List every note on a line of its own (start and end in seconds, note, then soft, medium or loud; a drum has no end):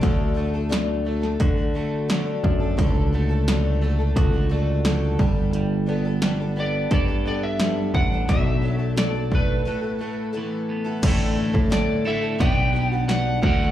0.00 1.36 D2 medium
0.00 0.37 D3 medium
0.00 0.33 F#3 medium
0.00 0.37 A3 medium
0.00 0.34 A3 medium
0.00 2.45 D4 medium
0.00 0.35 D4 medium
0.00 1.41 F#4 medium
0.00 0.36 A4 medium
0.00 kick loud
0.00 closed hi-hat medium
0.34 0.53 F#3 medium
0.34 0.53 A3 medium
0.34 0.54 D4 medium
0.34 0.53 A4 medium
0.54 0.69 A3 soft
0.54 0.70 D4 medium
0.54 0.70 A4 medium
0.69 1.05 D3 medium
0.69 1.04 F#3 medium
0.69 1.05 A3 medium
0.69 1.05 D4 medium
0.69 1.06 A4 medium
0.69 snare loud
0.69 closed hi-hat medium
1.05 1.23 F#3 medium
1.05 1.24 A3 medium
1.05 1.23 D4 medium
1.05 1.20 A4 medium
1.22 1.58 A3 soft
1.22 1.57 D4 soft
1.22 1.56 A4 medium
1.22 snare soft
1.40 2.40 D3 medium
1.40 3.13 F#4 medium
1.40 kick loud
1.40 closed hi-hat medium
1.57 1.74 A3 soft
1.57 1.75 D4 medium
1.57 1.75 A4 medium
1.74 2.08 F#3 medium
1.74 2.08 A3 medium
1.74 2.09 D4 medium
1.74 2.09 A4 medium
2.08 2.61 D3 medium
2.08 2.61 F#3 medium
2.08 2.61 A3 medium
2.08 2.61 D4 medium
2.08 2.59 A4 medium
2.08 snare medium
2.08 closed hi-hat medium
2.44 2.76 F#2 medium
2.44 5.95 D4 medium
2.44 kick medium
2.60 2.77 A3 soft
2.60 2.77 D4 medium
2.60 2.77 A4 medium
2.77 4.12 C#2 medium
2.77 3.47 D3 medium
2.77 3.11 F#3 medium
2.77 3.13 A3 medium
2.77 3.13 D4 medium
2.77 3.13 A4 medium
2.77 kick loud
2.77 closed hi-hat medium
3.12 3.30 F#3 medium
3.12 3.30 A3 medium
3.12 3.29 D4 medium
3.12 3.28 A4 medium
3.29 3.48 A3 soft
3.29 3.47 D4 medium
3.29 3.47 A4 medium
3.48 4.84 D3 medium
3.48 3.80 F#3 medium
3.48 3.81 A3 medium
3.48 3.82 D4 loud
3.48 3.82 A4 loud
3.48 snare loud
3.48 closed hi-hat medium
3.81 3.99 F#3 medium
3.81 3.99 A3 medium
3.81 3.99 D4 medium
3.81 3.98 A4 medium
3.99 4.34 A3 soft
3.99 4.33 D4 medium
3.99 4.31 A4 medium
4.16 5.15 C#2 loud
4.16 5.20 F#4 medium
4.16 kick loud
4.16 closed hi-hat medium
4.33 4.48 A3 soft
4.33 4.50 D4 medium
4.33 4.50 A4 medium
4.49 4.84 F#3 medium
4.49 4.84 A3 medium
4.49 4.84 D4 medium
4.49 4.85 A4 medium
4.85 5.19 D3 medium
4.85 5.19 F#3 medium
4.85 5.19 A3 medium
4.85 5.19 D4 medium
4.85 5.19 A4 medium
4.85 snare medium
4.85 closed hi-hat medium
5.19 5.51 G1 medium
5.19 5.85 G3 medium
5.19 5.87 B3 medium
5.19 5.88 D4 medium
5.19 5.88 A4 medium
5.19 kick loud
5.51 6.86 G1 medium
5.51 closed hi-hat medium
5.55 6.21 G3 medium
5.86 6.04 G3 medium
5.86 6.05 B3 medium
5.86 6.05 D4 medium
5.86 6.04 A4 medium
6.05 6.23 B3 soft
6.05 6.23 D4 soft
6.05 6.22 A4 medium
6.22 6.39 G3 medium
6.22 6.40 B3 medium
6.22 6.40 D4 medium
6.22 6.39 A4 medium
6.22 snare loud
6.22 closed hi-hat medium
6.40 6.56 B3 soft
6.40 6.57 D4 soft
6.40 6.57 A4 soft
6.56 7.08 G3 medium
6.56 7.08 B3 medium
6.56 7.08 D4 medium
6.56 7.07 A4 medium
6.56 6.90 D5 medium
6.91 7.90 G2 medium
6.91 8.33 A4 medium
6.91 7.26 D5 medium
6.91 kick loud
6.91 closed hi-hat medium
7.08 7.26 B3 soft
7.08 7.26 D4 soft
7.08 7.25 A4 medium
7.26 7.60 G3 medium
7.26 7.60 B3 medium
7.26 7.61 D4 medium
7.26 7.61 A4 medium
7.26 7.44 D5 medium
7.43 7.94 E5 medium
7.59 8.12 G3 medium
7.59 8.12 B3 medium
7.59 8.12 D4 medium
7.59 8.11 A4 medium
7.59 snare medium
7.59 closed hi-hat medium
7.94 8.27 A1 medium
7.94 8.29 D4 medium
7.94 8.30 F#5 loud
7.94 kick medium
8.12 8.29 B3 soft
8.12 8.28 D4 soft
8.12 8.29 A4 medium
8.28 9.62 B1 medium
8.28 8.63 B2 medium
8.28 8.61 F#3 medium
8.28 8.62 A3 medium
8.28 8.63 D4 medium
8.28 8.64 A4 medium
8.28 8.98 E5 medium
8.28 kick loud
8.28 closed hi-hat medium
8.62 8.80 F#3 soft
8.62 8.80 A3 medium
8.62 8.78 D4 medium
8.62 8.77 A4 medium
8.78 8.96 A3 soft
8.78 8.96 D4 medium
8.78 8.96 A4 soft
8.96 9.14 B2 medium
8.96 9.14 F#3 medium
8.96 9.14 A3 medium
8.96 9.14 D4 medium
8.96 9.12 A4 medium
8.96 9.33 D5 medium
8.96 snare loud
8.96 closed hi-hat medium
9.13 9.31 A3 soft
9.13 9.32 D4 soft
9.13 9.31 A4 medium
9.31 9.65 F#3 medium
9.31 9.64 A3 medium
9.31 9.66 D4 medium
9.31 9.66 A4 medium
9.31 10.66 B4 medium
9.31 kick medium
9.65 11.03 A2 medium
9.65 9.83 A3 medium
9.65 9.82 B3 medium
9.65 9.82 E4 medium
9.65 9.80 A4 medium
9.81 9.99 B3 soft
9.81 10.00 E4 soft
9.81 9.99 A4 medium
9.99 10.32 A3 medium
9.99 10.32 B3 medium
9.99 10.33 E4 medium
9.99 10.33 A4 medium
10.33 10.85 A3 medium
10.33 10.85 B3 medium
10.33 10.85 E4 medium
10.33 10.83 A4 medium
10.37 11.04 E3 medium
10.69 11.03 B3 medium
10.84 11.03 B3 soft
10.84 11.03 E4 medium
10.84 11.02 A4 medium
11.02 11.52 A1 medium
11.02 11.37 A2 medium
11.02 11.37 D3 loud
11.02 11.35 E3 medium
11.02 11.36 A3 loud
11.02 11.37 E4 medium
11.02 11.37 A4 loud
11.02 kick loud
11.02 closed hi-hat medium
11.02 crash loud
11.36 11.54 E3 medium
11.36 11.53 A3 medium
11.36 11.53 E4 medium
11.36 11.52 A4 medium
11.53 12.36 A2 medium
11.53 11.69 E3 soft
11.53 11.70 A3 soft
11.53 11.69 E4 soft
11.53 11.70 A4 medium
11.53 kick medium
11.69 12.05 A2 medium
11.69 12.05 D3 medium
11.69 12.03 E3 medium
11.69 12.04 A3 medium
11.69 12.05 E4 medium
11.69 12.06 A4 medium
11.69 12.08 D5 medium
11.69 snare loud
11.69 closed hi-hat medium
12.05 12.39 A2 medium
12.05 12.39 D3 medium
12.05 12.22 E3 medium
12.05 12.23 A3 medium
12.05 12.21 E4 medium
12.05 12.20 A4 medium
12.05 12.42 E5 loud
12.21 12.39 E3 soft
12.21 12.39 A3 soft
12.21 12.40 E4 soft
12.21 12.39 A4 soft
12.39 13.39 B1 medium
12.39 12.74 B2 medium
12.39 12.72 G3 medium
12.39 12.73 B3 medium
12.39 12.74 D4 medium
12.39 12.75 G4 medium
12.39 13.41 B4 medium
12.39 12.90 G5 loud
12.39 kick loud
12.39 closed hi-hat medium
12.73 12.91 G3 medium
12.73 12.91 B3 medium
12.73 12.92 D4 medium
12.73 12.91 G4 medium
12.90 13.09 D4 soft
12.90 13.09 G4 soft
12.90 13.08 F#5 loud
12.94 13.09 B3 soft
13.08 13.44 B2 medium
13.08 13.41 G3 medium
13.08 13.42 B3 medium
13.08 13.42 D4 medium
13.08 13.44 G4 medium
13.08 13.40 F#5 loud
13.08 snare medium
13.08 closed hi-hat medium
13.42 13.71 D2 medium
13.42 13.71 D3 loud
13.42 13.59 E3 medium
13.42 13.60 A3 medium
13.42 13.71 D4 loud
13.42 13.59 F#4 medium
13.42 13.71 D5 loud
13.42 13.71 F#5 medium
13.42 kick loud
13.60 13.71 A3 soft
13.60 13.71 D4 soft
13.60 13.71 F#4 medium